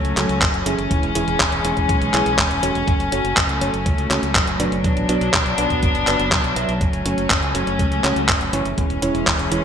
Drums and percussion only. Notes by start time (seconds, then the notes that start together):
0.05 closed hi-hat
0.17 clap, closed hi-hat
0.29 closed hi-hat
0.42 kick, clap, closed hi-hat
0.54 closed hi-hat
0.66 closed hi-hat
0.79 closed hi-hat
0.91 kick, closed hi-hat
1.03 closed hi-hat
1.15 closed hi-hat
1.28 closed hi-hat
1.40 kick, clap, closed hi-hat
1.52 closed hi-hat
1.65 closed hi-hat
1.77 kick, closed hi-hat
1.89 kick, closed hi-hat
2.02 closed hi-hat
2.14 clap, closed hi-hat
2.26 closed hi-hat
2.38 kick, clap, closed hi-hat
2.51 closed hi-hat
2.63 closed hi-hat
2.75 closed hi-hat
2.88 kick, closed hi-hat
3.00 closed hi-hat
3.12 closed hi-hat
3.25 closed hi-hat
3.37 kick, clap, closed hi-hat
3.49 closed hi-hat
3.61 closed hi-hat
3.74 closed hi-hat
3.86 kick, closed hi-hat
3.98 closed hi-hat
4.11 clap, closed hi-hat
4.23 closed hi-hat
4.35 kick, clap, closed hi-hat
4.47 closed hi-hat
4.60 closed hi-hat
4.72 closed hi-hat
4.84 kick, closed hi-hat
4.97 closed hi-hat
5.09 closed hi-hat
5.21 closed hi-hat
5.34 kick, clap, closed hi-hat
5.46 closed hi-hat
5.58 closed hi-hat
5.70 kick, closed hi-hat
5.83 kick, closed hi-hat
5.95 closed hi-hat
6.07 clap, closed hi-hat
6.20 closed hi-hat
6.32 kick, clap, closed hi-hat
6.44 closed hi-hat
6.56 closed hi-hat
6.69 closed hi-hat
6.81 kick, closed hi-hat
6.93 closed hi-hat
7.06 closed hi-hat
7.18 closed hi-hat
7.30 kick, clap, closed hi-hat
7.43 closed hi-hat
7.55 closed hi-hat
7.67 closed hi-hat
7.79 kick, closed hi-hat
7.92 closed hi-hat
8.04 clap, closed hi-hat
8.16 closed hi-hat
8.29 kick, clap, closed hi-hat
8.41 closed hi-hat
8.53 closed hi-hat
8.65 closed hi-hat
8.78 kick, closed hi-hat
8.90 closed hi-hat
9.02 closed hi-hat
9.15 closed hi-hat
9.27 kick, clap, closed hi-hat
9.39 closed hi-hat
9.52 closed hi-hat